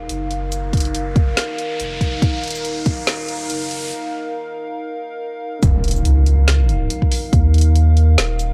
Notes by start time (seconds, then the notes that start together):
Already playing: D#4 A#4 F5, riser
0.09 F#1, closed hi-hat
0.31 closed hi-hat
0.52 closed hi-hat, shaker
0.73 kick, closed hi-hat
0.77 closed hi-hat
0.80 closed hi-hat
0.85 closed hi-hat
0.95 closed hi-hat
1.16 kick, closed hi-hat
1.37 snare, closed hi-hat
1.58 closed hi-hat
1.80 F1, closed hi-hat
2.01 kick, closed hi-hat
2.22 D#1, kick, closed hi-hat
2.44 closed hi-hat
2.47 closed hi-hat
2.51 closed hi-hat
2.55 shaker
2.65 closed hi-hat
2.86 kick, closed hi-hat
3.07 snare, closed hi-hat
3.29 closed hi-hat
3.50 F#1, closed hi-hat
3.71 closed hi-hat
5.63 D#1 D#4 A#4 F5, kick, closed hi-hat, impact, shaker
5.84 closed hi-hat
5.88 closed hi-hat
5.91 closed hi-hat
5.96 shaker
6.05 C#2, closed hi-hat
6.26 closed hi-hat
6.48 snare, closed hi-hat
6.69 closed hi-hat
6.90 closed hi-hat
7.02 kick
7.12 open hi-hat
7.33 D#2, kick, closed hi-hat
7.54 closed hi-hat
7.58 closed hi-hat
7.61 closed hi-hat
7.75 closed hi-hat
7.97 closed hi-hat
8.18 D#1, snare, closed hi-hat
8.39 closed hi-hat, shaker